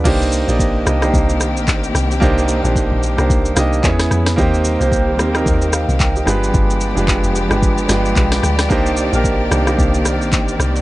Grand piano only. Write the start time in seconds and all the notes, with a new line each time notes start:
Already playing: B4
0.04 A#3 D4 D#4 G4 C5
0.47 A#3 D#4 G4 D5 D#5
0.85 A#3 D4 D#4 G4 D#5
1.01 A#3 D4 D#4 G4 C5
2.20 A#3 D4 D#4 G4 C5
2.63 A#3 D4 D#4 G4 C5
3.17 A#3 D4 D#4 G4 C5
3.55 A#3 D4 D#4 G4 D#5
3.82 B3 C#4 E4 G#4 C#5
4.36 A#3 C4 D#4 G4 C5
4.79 A#3 C4 D#4 G4 C5
5.17 A#3 C4 D#4 G4 C5
5.33 A#3 C4 D#4 G4 A#4
5.73 F5
6.00 A#4 G5
6.16 G4 D#5
6.25 G#3 D4 F4 G4 B4
6.95 G#3 D4 F4 G4 B4
7.49 G#3 D4 F4 G4 B4
7.88 G#3 D4 F4 G4 B4
8.69 A#3 D4 D#4 G4 C5
9.12 A#3 D4 D#4 G4 A#4
9.50 A#3 D4 D#4 G4 C5
9.66 A#3 D4 D#4 G4 C5